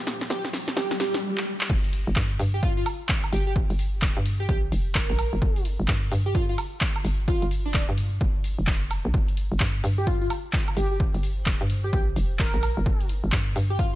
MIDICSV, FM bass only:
0, 0, Header, 1, 2, 480
1, 0, Start_track
1, 0, Key_signature, -2, "minor"
1, 0, Tempo, 465116
1, 1752, Time_signature, 4, 2, 24, 8
1, 14398, End_track
2, 0, Start_track
2, 0, Title_t, "FM bass"
2, 0, Program_c, 0, 39
2, 1752, Note_on_c, 0, 31, 98
2, 2117, Note_off_c, 0, 31, 0
2, 2140, Note_on_c, 0, 31, 103
2, 2218, Note_off_c, 0, 31, 0
2, 2232, Note_on_c, 0, 43, 97
2, 2458, Note_off_c, 0, 43, 0
2, 2472, Note_on_c, 0, 43, 97
2, 2937, Note_off_c, 0, 43, 0
2, 3432, Note_on_c, 0, 31, 104
2, 3797, Note_off_c, 0, 31, 0
2, 3820, Note_on_c, 0, 31, 101
2, 4277, Note_off_c, 0, 31, 0
2, 4301, Note_on_c, 0, 43, 96
2, 4618, Note_off_c, 0, 43, 0
2, 4632, Note_on_c, 0, 34, 95
2, 4858, Note_off_c, 0, 34, 0
2, 4872, Note_on_c, 0, 29, 100
2, 5237, Note_off_c, 0, 29, 0
2, 5261, Note_on_c, 0, 34, 100
2, 5477, Note_off_c, 0, 34, 0
2, 5500, Note_on_c, 0, 31, 98
2, 5578, Note_off_c, 0, 31, 0
2, 5592, Note_on_c, 0, 31, 102
2, 5957, Note_off_c, 0, 31, 0
2, 5981, Note_on_c, 0, 31, 101
2, 6058, Note_off_c, 0, 31, 0
2, 6072, Note_on_c, 0, 43, 101
2, 6298, Note_off_c, 0, 43, 0
2, 6312, Note_on_c, 0, 43, 96
2, 6778, Note_off_c, 0, 43, 0
2, 7272, Note_on_c, 0, 31, 98
2, 7637, Note_off_c, 0, 31, 0
2, 7661, Note_on_c, 0, 31, 99
2, 8117, Note_off_c, 0, 31, 0
2, 8140, Note_on_c, 0, 43, 99
2, 8458, Note_off_c, 0, 43, 0
2, 8472, Note_on_c, 0, 31, 96
2, 8837, Note_off_c, 0, 31, 0
2, 8860, Note_on_c, 0, 29, 92
2, 9317, Note_off_c, 0, 29, 0
2, 9341, Note_on_c, 0, 34, 97
2, 9418, Note_off_c, 0, 34, 0
2, 9432, Note_on_c, 0, 31, 101
2, 9797, Note_off_c, 0, 31, 0
2, 9821, Note_on_c, 0, 31, 99
2, 9898, Note_off_c, 0, 31, 0
2, 9912, Note_on_c, 0, 43, 96
2, 10138, Note_off_c, 0, 43, 0
2, 10153, Note_on_c, 0, 43, 102
2, 10618, Note_off_c, 0, 43, 0
2, 11112, Note_on_c, 0, 31, 100
2, 11477, Note_off_c, 0, 31, 0
2, 11501, Note_on_c, 0, 31, 98
2, 11957, Note_off_c, 0, 31, 0
2, 11981, Note_on_c, 0, 43, 98
2, 12298, Note_off_c, 0, 43, 0
2, 12312, Note_on_c, 0, 34, 95
2, 12538, Note_off_c, 0, 34, 0
2, 12552, Note_on_c, 0, 29, 101
2, 12917, Note_off_c, 0, 29, 0
2, 12940, Note_on_c, 0, 34, 98
2, 13157, Note_off_c, 0, 34, 0
2, 13181, Note_on_c, 0, 31, 102
2, 13258, Note_off_c, 0, 31, 0
2, 13273, Note_on_c, 0, 31, 97
2, 13637, Note_off_c, 0, 31, 0
2, 13661, Note_on_c, 0, 31, 100
2, 13738, Note_off_c, 0, 31, 0
2, 13752, Note_on_c, 0, 43, 99
2, 13978, Note_off_c, 0, 43, 0
2, 13992, Note_on_c, 0, 43, 99
2, 14398, Note_off_c, 0, 43, 0
2, 14398, End_track
0, 0, End_of_file